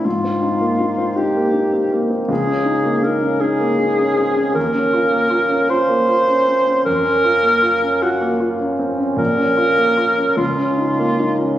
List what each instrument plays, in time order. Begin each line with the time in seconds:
0.05 grand piano G#2, alto saxophone F4
0.24 grand piano C4
0.42 grand piano D#4
0.61 grand piano A#3
0.80 grand piano D#4
0.98 grand piano C4
1.16 grand piano D#4, alto saxophone G4
1.36 grand piano A#3
1.54 grand piano D#4
1.73 grand piano C4
1.92 grand piano A#3
2.10 grand piano C4
2.28 grand piano C#2, alto saxophone G#4
2.47 grand piano C#4
2.65 grand piano D#4
2.84 grand piano A#3
3.03 grand piano D#4, alto saxophone A#4
3.21 grand piano C#4
3.40 grand piano D#4, alto saxophone G#4
3.60 grand piano A#3
3.79 grand piano D#4
3.98 grand piano C#4
4.17 grand piano C4
4.36 grand piano C#4
4.54 grand piano D#2, alto saxophone A#4
4.73 grand piano C#4
4.93 grand piano F4
5.11 grand piano A#3
5.30 grand piano F4
5.49 grand piano C#4
5.70 grand piano F4, alto saxophone C5
5.89 grand piano A#3
6.08 grand piano F4
6.28 grand piano C#4
6.48 grand piano C4
6.67 grand piano C#4
6.85 grand piano F#2, alto saxophone A#4
7.05 grand piano C#4
7.24 grand piano F4
7.43 grand piano A#3
7.62 grand piano F4
7.82 grand piano C#4
8.02 grand piano F4, alto saxophone F#4
8.21 grand piano A#3
8.40 grand piano F4
8.60 grand piano C#4
8.79 grand piano C4
8.98 grand piano C#4
9.16 grand piano A#1, alto saxophone A#4
9.37 grand piano C#4
9.57 grand piano F4
9.78 grand piano A#3
9.97 grand piano F4
10.18 grand piano C#4
10.37 grand piano C#2, alto saxophone F4
10.57 grand piano C#4
10.78 grand piano D#4
10.99 grand piano A#3
11.20 grand piano D#4
11.41 grand piano C#4